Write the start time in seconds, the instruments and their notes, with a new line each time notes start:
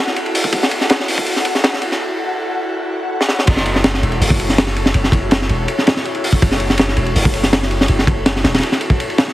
Already playing: analog synth pad E4 F#4 A4 F#5
0.07 snare
0.16 ride
0.26 ride
0.35 open hi-hat
0.44 kick
0.53 kick, ride
0.63 snare
0.71 ride
0.81 snare
0.90 snare, ride
1.00 snare
1.08 open hi-hat
1.18 kick
1.26 ride
1.36 snare
1.45 ride
1.55 snare
1.64 snare, ride
1.73 snare
1.82 ride
1.92 snare
3.21 snare
3.29 snare
3.39 snare
3.47 808-style bass F#1, analog synth pad E4 F#4 A4 C#5, kick, crash, ride
3.57 snare
3.66 ride
3.76 snare
3.84 snare, ride
3.94 snare
4.03 808-style bass E1, ride
4.12 ride
4.21 808-style bass F#1, open hi-hat
4.30 kick
4.40 ride
4.49 snare
4.58 snare, ride
4.67 snare
4.76 ride
4.86 snare
4.94 808-style bass F#1, ride
5.04 snare
5.12 kick, ride
5.31 snare, ride
5.42 snare
5.49 808-style bass E1, ride
5.68 ride
5.78 snare
5.87 snare, ride
5.97 snare
6.05 ride
6.15 ride
6.24 open hi-hat
6.33 kick
6.42 808-style bass F#1, kick, ride
6.52 snare
6.60 ride
6.70 snare
6.78 snare, ride
6.89 snare
6.97 808-style bass E1, ride
7.06 ride
7.16 808-style bass F#1, open hi-hat
7.25 kick
7.34 ride
7.43 snare
7.53 snare, ride
7.63 snare
7.71 ride
7.81 snare
7.88 808-style bass F#1, ride
7.99 snare
8.07 kick, ride
8.26 snare, ride
8.36 snare
8.44 808-style bass E1, snare, ride
8.54 snare, ride
8.58 snare, ride
8.63 ride
8.72 snare
8.81 ride
8.90 kick
9.00 ride
9.10 ride
9.18 snare, ride
9.28 snare